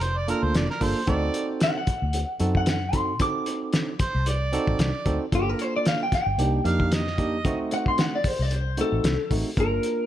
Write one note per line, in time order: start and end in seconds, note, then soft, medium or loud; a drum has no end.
0.00 0.32 F1 medium
0.00 0.19 C5 medium
0.00 closed hi-hat medium
0.17 0.28 D5 medium
0.28 0.65 A#3 medium
0.28 0.65 D4 medium
0.28 0.65 F4 medium
0.28 0.65 A4 medium
0.28 0.45 A#4 medium
0.28 closed hi-hat medium
0.43 0.52 D2 medium
0.43 0.54 C5 medium
0.54 0.66 F1 medium
0.54 0.69 D5 medium
0.54 snare loud
0.54 closed hi-hat medium
0.70 0.84 A#4 medium
0.70 snare soft
0.81 0.93 G1 medium
0.81 1.00 A#3 medium
0.81 1.00 D4 medium
0.81 1.00 F4 medium
0.81 1.00 A4 medium
0.81 1.07 C5 medium
0.81 kick medium
0.81 open hi-hat medium
1.07 1.29 D2 loud
1.07 1.79 C4 medium
1.07 1.80 D#4 medium
1.07 1.80 F#4 medium
1.07 1.80 A4 medium
1.07 1.48 D5 medium
1.07 kick loud
1.07 closed hi-hat medium
1.34 closed hi-hat medium
1.60 1.76 F#5 medium
1.60 snare loud
1.60 closed hi-hat medium
1.78 2.54 F#5 medium
1.87 kick medium
1.87 closed hi-hat medium
2.02 2.23 D2 medium
2.13 closed hi-hat medium
2.40 3.20 F#2 medium
2.40 2.77 C4 medium
2.40 2.77 D#4 medium
2.40 2.77 F#4 medium
2.40 2.77 A4 medium
2.40 closed hi-hat soft
2.55 2.68 F#5 medium
2.55 kick medium
2.66 2.96 F#5 medium
2.66 snare loud
2.66 closed hi-hat medium
2.93 3.12 C4 medium
2.93 3.12 D#4 medium
2.93 3.12 F#4 medium
2.93 3.13 A4 medium
2.93 3.20 C6 medium
2.93 kick medium
2.93 closed hi-hat medium
3.19 3.41 D3 loud
3.19 3.92 C4 medium
3.19 3.92 D#4 medium
3.19 3.92 F#4 medium
3.19 3.93 A4 medium
3.19 4.24 D6 medium
3.19 kick loud
3.19 closed hi-hat medium
3.46 closed hi-hat medium
3.73 snare loud
3.73 closed hi-hat medium
3.99 4.29 C5 medium
3.99 kick medium
3.99 closed hi-hat medium
4.15 4.56 C2 medium
4.26 4.78 D5 medium
4.26 closed hi-hat medium
4.53 4.89 C4 medium
4.53 4.89 D#4 medium
4.53 4.90 F#4 medium
4.53 4.90 A4 medium
4.53 closed hi-hat medium
4.67 4.77 A1 medium
4.67 kick medium
4.79 4.91 C2 medium
4.79 5.20 D5 medium
4.79 snare loud
4.79 closed hi-hat medium
5.06 5.17 D2 medium
5.06 5.24 C4 medium
5.06 5.25 D#4 medium
5.06 5.25 F#4 medium
5.06 5.25 A4 medium
5.06 kick medium
5.06 closed hi-hat medium
5.32 5.53 G1 loud
5.32 6.04 A#3 medium
5.32 6.04 D4 medium
5.32 6.05 F4 medium
5.32 5.49 G4 medium
5.32 6.05 A4 medium
5.32 kick loud
5.32 closed hi-hat medium
5.49 5.62 A#4 medium
5.59 5.74 C5 medium
5.59 closed hi-hat medium
5.76 5.86 D5 medium
5.86 6.01 F5 medium
5.86 snare loud
5.86 closed hi-hat medium
6.03 6.13 G5 medium
6.12 6.65 G5 medium
6.12 kick medium
6.12 snare soft
6.12 closed hi-hat medium
6.26 6.36 G1 medium
6.38 6.59 C2 loud
6.38 6.60 A#3 medium
6.38 6.60 D4 medium
6.38 6.61 D#4 medium
6.38 6.61 G4 medium
6.38 closed hi-hat medium
6.65 7.45 F2 medium
6.65 7.01 A#3 medium
6.65 7.02 D4 medium
6.65 7.02 D#4 medium
6.65 7.02 G4 medium
6.65 6.95 F5 loud
6.65 closed hi-hat medium
6.80 kick medium
6.92 7.58 D#5 medium
6.92 snare loud
6.92 closed hi-hat medium
7.07 snare soft
7.18 7.37 A#3 medium
7.18 7.37 D4 medium
7.18 7.37 D#4 medium
7.18 7.37 G4 medium
7.18 kick medium
7.18 closed hi-hat medium
7.45 7.66 D2 loud
7.45 8.17 A3 medium
7.45 8.17 C4 medium
7.45 8.17 D#4 medium
7.45 8.17 F#4 medium
7.45 kick loud
7.45 closed hi-hat medium
7.71 7.87 F#5 medium
7.71 closed hi-hat medium
7.86 7.98 C6 medium
7.86 kick medium
7.98 8.13 F#5 medium
7.98 snare loud
7.98 closed hi-hat medium
8.15 8.28 D5 medium
8.24 8.42 C5 medium
8.24 kick medium
8.24 open hi-hat medium
8.39 8.81 C2 medium
8.39 8.54 D5 medium
8.51 8.78 C5 medium
8.51 closed hi-hat medium
8.77 9.14 A3 medium
8.77 9.14 C4 medium
8.77 9.14 D#4 medium
8.77 9.14 F#4 medium
8.77 9.31 A4 medium
8.77 closed hi-hat medium
8.92 9.02 A1 medium
9.04 9.16 C2 medium
9.04 snare loud
9.04 closed hi-hat medium
9.31 9.42 A1 medium
9.31 9.49 A3 medium
9.31 9.49 C4 medium
9.31 9.49 D#4 medium
9.31 9.50 F#4 medium
9.31 kick medium
9.31 open hi-hat medium
9.57 9.78 G1 medium
9.57 10.06 A#3 medium
9.57 10.06 D4 medium
9.57 10.06 F4 medium
9.57 10.06 A#4 medium
9.57 kick loud
9.57 closed hi-hat medium
9.83 closed hi-hat medium